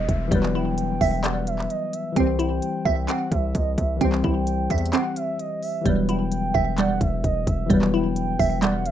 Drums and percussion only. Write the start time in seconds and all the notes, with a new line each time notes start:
0.09 kick, closed hi-hat
0.32 kick, closed hi-hat
0.43 clap
0.78 closed hi-hat
1.01 kick, open hi-hat
1.24 clap, closed hi-hat
1.47 closed hi-hat
1.59 clap
1.70 closed hi-hat
1.93 closed hi-hat
2.16 kick, closed hi-hat
2.39 closed hi-hat
2.62 closed hi-hat
2.86 kick
3.09 clap, closed hi-hat
3.32 kick, closed hi-hat
3.55 kick, closed hi-hat
3.78 kick, closed hi-hat
4.01 kick, closed hi-hat
4.12 clap
4.24 kick
4.47 closed hi-hat
4.70 kick, closed hi-hat
4.78 closed hi-hat
4.86 closed hi-hat
4.93 clap, closed hi-hat
5.16 closed hi-hat
5.39 closed hi-hat
5.63 open hi-hat
5.86 kick, closed hi-hat
6.09 closed hi-hat
6.32 closed hi-hat
6.55 kick
6.78 clap, closed hi-hat
7.01 kick, closed hi-hat
7.24 kick, closed hi-hat
7.47 kick, closed hi-hat
7.70 kick, closed hi-hat
7.82 clap
8.16 closed hi-hat
8.39 kick, open hi-hat
8.62 clap, closed hi-hat
8.86 closed hi-hat